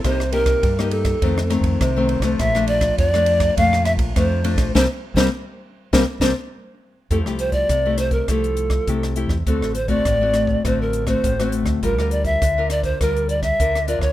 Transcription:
<<
  \new Staff \with { instrumentName = "Pan flute" } { \time 4/4 \key f \major \tempo 4 = 102 c''8 bes'4 a'4 r8 c''4 | e''8 d''8 d''4 f''8 e''8 c''4 | c''16 r8 c''16 r4 c''16 r16 c''16 r4 r16 | a'8 c''16 d''8. c''16 bes'16 a'4. r8 |
a'8 c''16 d''4~ d''16 c''16 bes'8 c''8. r8 | bes'8 d''16 e''8. d''16 c''16 bes'8 d''16 e''8. d''16 des''16 | }
  \new Staff \with { instrumentName = "Nylon-string guitar" } { \time 4/4 \key f \major << { <bes ees' g'>16 r16 <bes ees' g'>8. <bes ees' g'>8. <ees a c'>16 r16 <ees a c'>8. <ees a c'>8 <f a d'>16~ | <f a d'>16 <f a d'>4 <f a d'>8. <f a d'>4 <f a d'>8 <f a d'>8 | <g bes c'>16 r8 <g bes c'>16 r4 <g bes c'>16 r16 <g bes c'>16 r4 r16 | <a e' g'>16 <a e' g'>4 <a e' g'>8. <a e' g'>4 <a e' g'>8 <a e' g'>16 r16 |
<a c' fis'>8 r16 <a c' fis'>8 <a c' fis'>8. <a c' fis'>8. <a c' fis'>8 <a c' fis'>8. | <d' f' bes'>16 <d' f' bes'>4 <d' f' bes'>8. <d' f' bes'>8. r16 <d' f' bes'>16 r16 <d' f' bes'>16 r16 | } \\ { c4 g,4 f,4 c4 | bes,4 f,4 bes,4 f,4 | r1 | f4 c4 f4 c4 |
d4 a,4 d4 a,4 | g4 d4 g4 d4 | } >> }
  \new Staff \with { instrumentName = "Fingered electric bass" } { \clef bass \time 4/4 \key f \major c,4 g,4 f,8. f,16 c,8. c,16 | bes,,4 f,4 f,8. bes,,16 f,8. bes,,16 | c,16 r8 c,16 r4 c,16 r16 c,16 r4 r16 | f,16 c,8. c,4 c,4 c,8. e,16 |
d,16 a,,8. a,,4 a,,4 a,,8. d,16 | g,,16 d,8. d,4 d,4 d,8. d,16 | }
  \new DrumStaff \with { instrumentName = "Drums" } \drummode { \time 4/4 <bd cymr ss>16 ss16 cymr16 <bd cymr ss>16 <bd cymr>16 ss16 cymr16 <bd cymr ss>16 <bd cymr>16 ss16 <cymr ss>16 <bd cymr>16 <bd cymr ss>8 cymr16 <bd cymr ss>16 | <bd cymr ss>16 ss16 cymr16 <bd cymr ss>16 <bd cymr>16 ss16 cymr16 <bd cymr ss>16 <bd cymr>16 ss16 <cymr ss>16 <bd cymr>16 <bd cymr ss>8 cymr16 <bd cymr ss>16 | <bd sn>8. <bd sn>16 r4 <bd sn>8 <bd sn>8 r4 | <hh bd>16 ss16 hh16 <hh bd>16 <hh bd ss>8 <hh ss>16 <hh bd>16 <hh bd ss>16 hh16 hh16 <hh bd ss>16 <hh bd>16 <hh ss>16 hh16 <bd ss>16 |
<hh bd>16 ss16 hh16 <hh bd>16 <hh bd ss>8 <hh ss>16 bd16 <hh bd ss>8 hh16 <hh bd ss>16 <hh bd>16 <hh ss>16 hh16 <hh bd ss>16 | <hh bd>16 ss16 hh16 <hh bd>16 <hh bd ss>8 <hh ss>16 <hh bd>16 <hh bd ss>16 hh16 hh16 <hh bd ss>16 <hh bd>16 <hh ss>16 hh16 <bd ss>16 | }
>>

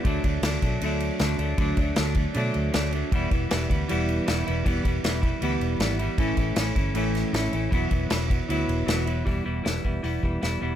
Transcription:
<<
  \new Staff \with { instrumentName = "Overdriven electric guitar" } { \time 4/4 \key e \dorian \tempo 4 = 156 <d fis a d'>8 <fis a d'>8 <d fis a d'>8 <fis a d'>8 <d fis a d'>4 <d fis a d'>8 <fis a d'>8 | <d fis a d'>8 <fis a d'>8 <d fis a d'>8 <fis a d'>8 <d fis a d'>4 <d fis a d'>8 <fis a d'>8 | <e g b e'>8 <g b e'>8 <e g b e'>8 <g b e'>8 <e g b e'>4 <e g b e'>8 <g b e'>8 | <e g b e'>8 <g b e'>8 <e g b e'>8 <g b e'>8 <e g b e'>4 <e g b e'>8 <g b e'>8 |
<a, e a cis' e'>8 <a cis' e'>8 <e a cis' e'>8 <a cis' e'>8 <a, e a cis' e'>4 <e a cis' e'>8 <a cis' e'>8 | <e fis b e'>8 <fis b e'>8 <e fis b e'>8 <fis b e'>8 <e fis b e'>4 <e fis b e'>8 <fis b e'>8 | <e g b e'>8 <e g b e'>8 <e g b e'>8 <e g b e'>8 <e g b e'>8 <e g b e'>8 <e g b e'>8 <e g b e'>8 | }
  \new Staff \with { instrumentName = "Fingered electric bass" } { \clef bass \time 4/4 \key e \dorian d,8 d,8 d,8 b,,8 d,4 d,8 d,8 | d,8 d,8 d,4 b,8 d,8 d,4 | e,,8 e,,8 e,,8 d,8 e,,4 e,,8 e,,8 | r8 e,,8 e,,4 d,8 e,,8 gis,,4 |
a,,8 a,,8 a,,8 g,,8 a,,4 a,,8 a,,8 | e,,8 e,,8 e,,4 d,8 e,,8 e,,4 | e,,8 e,,8 e,,8 e,,8 e,,8 e,,8 e,,8 e,,8 | }
  \new DrumStaff \with { instrumentName = "Drums" } \drummode { \time 4/4 <cymc bd>8 <cymc bd>8 <cymc sn>8 <cymc bd>8 cymc8 cymc8 <cymc sn>8 cymc8 | <cymc bd>8 <cymc bd>8 <cymc sn>8 <cymc bd>8 cymc8 cymc8 <cymc sn>8 cymc8 | <cymc bd>8 <cymc bd>8 <cymc sn>8 <cymc bd>8 cymc8 cymc8 <cymc sn>8 cymc8 | <cymc bd>8 <cymc bd>8 <cymc sn>8 <cymc bd>8 cymc8 cymc8 <cymc sn>8 cymc8 |
<cymc bd>8 <cymc bd>8 <cymc sn>8 <cymc bd>8 cymc8 <cymc sn>8 <cymc sn>8 cymc8 | <cymc bd>8 <cymc bd>8 <cymc sn>8 <cymc bd>8 cymc8 cymc8 <cymc sn>8 cymc8 | <hho bd>4 <hho sn>8 bd8 hho8 bd8 <hho sn>4 | }
>>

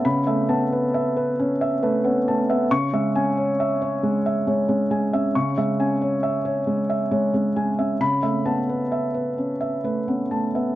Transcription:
<<
  \new Staff \with { instrumentName = "Felt piano" } { \time 6/8 \key cis \minor \tempo 4. = 45 << { r2. | cis'''8 r2 r8 | r2. | b''8 r2 r8 | } \\ { <e'' b''>16 e''16 a''16 b'16 e''16 b'16 cis'16 e''16 b'16 cis'16 a''16 e''16 | r16 e''16 gis''16 cis''16 e''16 cis''16 gis16 e''16 cis''16 gis16 gis''16 e''16 | cis'''16 e''16 gis''16 cis''16 e''16 cis''16 gis16 e''16 cis''16 gis16 gis''16 e''16 | r16 e''16 a''16 b'16 e''16 b'16 cis'16 e''16 b'16 cis'16 a''16 e''16 | } >> }
  \new Staff \with { instrumentName = "Felt piano" } { \time 6/8 \key cis \minor <cis b>16 a16 b8 r4 a16 b16 a16 b16 | cis16 gis16 cis'8 r4 gis16 cis'16 gis16 cis'16 | cis16 gis16 cis'8 r4 gis16 cis'16 gis16 cis'16 | cis16 a16 b8 r4 a16 b16 a16 b16 | }
>>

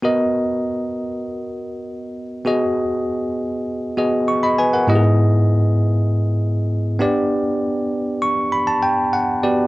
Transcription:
\new Staff \with { instrumentName = "Tine electric piano" } { \time 4/4 \key b \major \tempo 4 = 99 << { r1 | r2. cis'''16 <dis'' b''>16 <b' gis''>16 <ais' fis''>16~ | <ais' fis''>16 r2. r8. | r4. cis'''8 b''16 a''16 g''8 fis''8 d''8 | } \\ { <b fis' ais' dis''>1 | <b fis' gis' dis''>2~ <b fis' gis' dis''>8 <b fis' gis' dis''>4. | <gis, b e' g' gis' dis''>2.~ <gis, b e' g' gis' dis''>8 <b d' g' d''>8~ | <b d' g' d''>2.~ <b d' g' d''>8 <b fis' g'>8 | } >> }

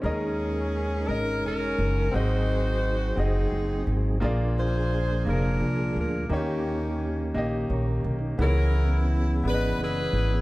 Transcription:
<<
  \new Staff \with { instrumentName = "Saxophone section" } { \time 6/8 \key dis \phrygian \tempo 4. = 57 << { gis'4. ais'8 ais'4 | bis'4. gis'4 r8 | r8 bis'4 ais'4 ais'8 | g'4 r2 |
ais'4 r8 b'8 b'4 | } \\ { cis'4. r8 cis'4 | <dis' fis'>4. <bis dis'>4. | r8 <eis' gis'>4 <d' eis'>4. | <ais cis'>4. r4. |
e'4. r8 <e' gis'>4 | } >> }
  \new Staff \with { instrumentName = "Grand piano" } { \time 6/8 \key dis \phrygian <cis' gis' ais' dis''>4 r8 <cis' gis' ais' dis''>4 r8 | <bis fis' gis' dis''>4 r8 <bis fis' gis' dis''>4 r8 | <ais eis' gis' d''>4 r8 <ais eis' gis' ais'>4 r8 | <ais dis' g' cis''>4 r8 <ais dis' g' dis''>4 r8 |
<b e' gis' cis''>4 r8 <b e' gis' d'' dis''>4 r8 | }
  \new Staff \with { instrumentName = "Grand piano" } { \clef bass \time 6/8 \key dis \phrygian dis4. r4. | gis,4. r4. | ais,4. r4. | dis4. r4. |
cis4. r4. | }
  \new Staff \with { instrumentName = "Tonewheel organ" } { \time 6/8 \key dis \phrygian << { r2. | r2. | r2. | r2 <ais' cis''>16 <g' ais'>8 <dis' g'>16~ |
<dis' g'>16 r2 r8. | } \\ { <g gis cis' dis' ais'>2. | <fis bis dis' gis'>2. | <eis ais d' gis'>2. | <dis ais cis' g'>2. |
<e b cis' gis'>2. | } >> }
  \new Staff \with { instrumentName = "Upright bass" } { \clef bass \time 6/8 \key dis \phrygian dis,4. gis,,8 e,,8 fis,,8 | gis,,4. fis,,8 fis,,8 gis,,8 | ais,,4. eis,,8 bis,,8 d,8 | dis,4. ais,,8 ais,,8 b,,8 |
cis,4. gis,,8 fis,,8 gis,,8 | }
>>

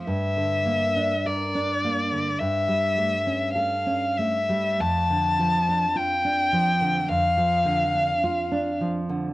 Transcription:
<<
  \new Staff \with { instrumentName = "Violin" } { \time 4/4 \key d \minor \tempo 4 = 52 e''4 d''4 e''4 f''8 e''8 | a''4 g''4 f''4. r8 | }
  \new Staff \with { instrumentName = "Nylon-string guitar" } { \clef bass \time 4/4 \key d \minor g,16 d16 bes16 d'16 bes'16 d'16 bes16 d16 g,16 g16 a16 cis'16 a'16 cis'16 a16 g16 | f,16 d16 f16 d'16 f'16 d'16 f16 d16 f,16 f16 d16 d'16 f'16 d'16 f16 d16 | }
>>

